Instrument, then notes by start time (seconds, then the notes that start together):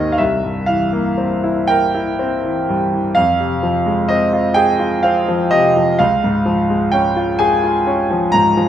grand piano
Already playing: G#1 D#2 D#3 C4 D#4 G#4 D#5 F5
0.12 F5
0.18 C2 E5
0.43 G2
0.66 E3 F5
0.93 A#3
1.18 C4
1.44 E4
1.68 A#4 G5
1.95 E4
2.19 C4
2.44 E3
2.69 G2
2.92 E3
3.15 F2 F5
3.40 C3
3.63 F3
3.86 G#3
4.08 C4 D#5
4.33 F4
4.54 G#4 G5
4.79 F4
5.03 C4 F5
5.28 F3
5.51 C3 D#5
5.77 F3
5.99 C#2 F5
6.24 G#2
6.46 F3
6.70 G#3
6.92 C#4 G5
7.16 F4
7.39 G#4 G#5
7.64 F4
7.87 C#4
8.11 F3
8.32 G#2 A#5
8.57 F3